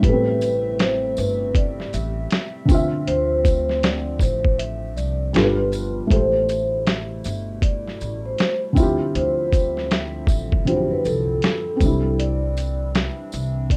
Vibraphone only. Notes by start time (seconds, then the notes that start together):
0.04 B4
0.80 C5
1.18 B4
1.56 D5
1.94 E5
3.07 C5
3.84 D5
4.21 C5
4.59 E5
4.96 D5
5.34 B4
6.11 C5
6.87 E5
7.25 E5
7.63 D5
8.26 C5
9.15 C5
9.91 E5
10.29 E5
10.67 C5
10.91 B4
11.05 A4
12.19 D5
12.95 E5
13.34 E5
13.71 D5